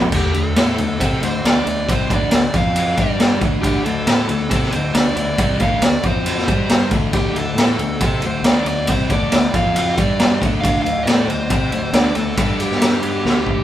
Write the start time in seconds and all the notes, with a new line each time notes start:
Already playing: A#1 A#2 F3 A#3
0.01 floor tom
0.12 D2 D3 A3 D4, kick, crash
0.16 G4
0.34 D2 D3 A3 A4, ride
0.56 A2 A3 E4 A4, snare, ride
0.78 D2 D3 A3, ride
1.00 C3 C4 G4 C5, kick, ride
1.04 A4
1.22 D2 D3 A3 C5, ride
1.44 D2 D3 A3 D4 D5, snare, ride
1.66 D2 D3 A3 D5, ride
1.89 C2 C3 G3 C4 C5, kick, ride
2.09 D2 D3 A3 D4, kick, ride
2.14 D5
2.31 D2 D3 A3, snare, ride
2.54 F2 F3 C4 F4 F5, kick, ride
2.76 ride
2.97 G2 G3 D4 G4 D5, kick, ride
3.20 snare, ride
3.41 D2 D3 A3 D4, kick, ride
3.62 D2 D3 A3 D4 G4, kick, ride
3.85 D2 D3 A3 A4, ride
4.07 A2 A3 E4 A4, snare, ride
4.28 D2 D3 A3, ride
4.49 C3 C4 G4 A4 C5, kick, ride
4.63 snare
4.71 D2 D3 A3 C5, ride
4.94 D2 D3 A3 D4 D5, snare, ride
5.16 D2 D3 A3 D5, ride
5.38 C2 C3 G3 C4, kick, ride
5.60 D2 D3 A3 D4 F5, kick, ride
5.81 D2 D3 A3 D5, snare, ride
6.03 F2 F3 C4 F4 C5, kick, ride
6.26 ride
6.38 snare
6.48 G2 G3 D4 G4, kick, ride
6.69 snare, ride
6.91 D2 D3 A3 D4, kick, ride
7.13 D2 D3 A3 D4 G4, kick, ride
7.33 D2 D3 A3, ride
7.39 A4
7.55 A2 A3, snare, ride
7.59 E4 A4
7.78 D2 D3 A3, ride
8.00 C3 C4 G4 A4 C5, kick, ride
8.20 D2, ride
8.25 D3 A3 C5
8.43 D2 D5, snare, ride
8.47 D3 A3 D4
8.65 D2 D3 A3 D5, ride
8.87 C2 C3 G3 C4 C5, kick, ride
9.10 D2 D3 A3 D4 D5, kick, ride
9.30 D2 D3 A3, snare, ride
9.54 F2 F3 C4 F4 F5, kick, ride
9.76 ride
9.98 G2 G3 D4 G4 D5, kick, ride
10.19 snare, ride
10.42 D2 D3 A3 D4, kick, ride
10.61 D2 D3 A3 D4 F5, kick, ride
10.82 D2 D3 A3 F5, ride
11.03 A2 D5, ride
11.07 A3 E4 A4, snare
11.28 D2 D3 A3 C5, ride
11.50 C3 C4 G4 C5, kick, ride
11.71 D2 D3 A3, ride
11.93 D2 D3 A3 D4 D5, snare, ride
12.15 D2 D3 A3 A4, ride
12.37 G2 G3 D4 G4 A4, kick, ride
12.60 G4, ride
12.71 snare
12.81 snare, ride
13.03 ride
13.25 D2 D3 A3 D4, snare
13.47 kick